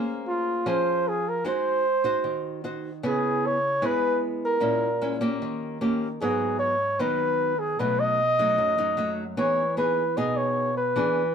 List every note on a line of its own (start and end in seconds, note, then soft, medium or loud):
0.00 0.64 A#3 medium
0.00 0.63 C#4 medium
0.00 0.63 G#4 medium
0.00 0.63 C5 medium
0.28 0.69 F4 loud
0.66 1.43 F3 medium
0.66 1.19 C#4 medium
0.66 1.19 G#4 medium
0.66 1.20 C5 medium
0.66 1.10 C5 loud
1.08 1.30 G#4 medium
1.29 1.47 A#4 medium
1.44 2.22 G#3 medium
1.44 1.84 D#4 medium
1.44 1.85 F#4 medium
1.44 1.85 C5 medium
1.44 2.61 C5 loud
2.04 2.61 D#4 medium
2.04 2.61 F#4 medium
2.04 2.61 C5 medium
2.24 3.01 D#3 medium
2.64 2.90 D#4 medium
2.64 2.90 F#4 medium
2.64 2.90 C5 medium
3.03 3.81 C#3 medium
3.03 3.57 B3 medium
3.03 3.57 E4 medium
3.03 3.57 G#4 medium
3.03 3.48 G#4 medium
3.46 3.87 C#5 loud
3.82 4.60 G#3 medium
3.82 4.58 B3 medium
3.82 4.59 E4 medium
3.82 4.59 G#4 medium
3.82 4.24 B4 loud
4.45 5.19 A#4 medium
4.60 5.39 A#2 medium
4.60 4.87 G#3 medium
4.60 4.87 C#4 medium
4.60 4.87 E4 medium
5.02 5.18 G#3 medium
5.02 5.18 C#4 medium
5.02 5.18 E4 medium
5.21 5.77 A#3 medium
5.21 5.77 C#4 medium
5.21 5.78 G4 medium
5.42 6.19 D#3 medium
5.81 6.07 A#3 medium
5.81 6.07 C#4 medium
5.81 6.07 G4 medium
6.21 6.98 G#2 medium
6.21 6.74 F#3 medium
6.21 6.74 B3 medium
6.21 6.75 D#4 medium
6.21 6.58 G#4 medium
6.59 7.02 C#5 loud
6.99 7.77 D#3 medium
6.99 7.53 F#3 medium
6.99 7.53 B3 medium
6.99 7.53 D#4 medium
6.99 7.61 B4 loud
7.59 7.81 G#4 medium
7.79 8.57 B2 medium
7.79 8.19 F#3 medium
7.79 8.19 A3 medium
7.79 8.19 D#4 medium
7.79 8.01 B4 loud
8.00 9.18 D#5 loud
8.39 8.75 F#3 medium
8.39 8.76 A3 medium
8.39 8.76 D#4 medium
8.58 9.36 F#2 medium
8.78 8.95 F#3 medium
8.78 8.95 A3 medium
8.78 8.95 D#4 medium
8.97 9.23 F#3 medium
8.97 9.23 A3 medium
8.97 9.24 D#4 medium
9.37 10.15 E3 medium
9.37 9.63 B3 medium
9.37 9.63 D#4 medium
9.37 9.63 G#4 medium
9.37 9.74 C#5 loud
9.77 10.03 B3 medium
9.77 10.03 D#4 medium
9.77 10.03 G#4 medium
9.77 10.18 B4 medium
10.17 10.94 B2 medium
10.17 10.70 B3 medium
10.17 10.71 D#4 medium
10.17 10.71 G#4 medium
10.17 10.38 D#5 medium
10.37 10.77 C#5 medium
10.77 11.35 B4 medium
10.96 11.35 E3 medium
10.96 11.22 B3 medium
10.96 11.22 D4 medium
10.96 11.22 G#4 medium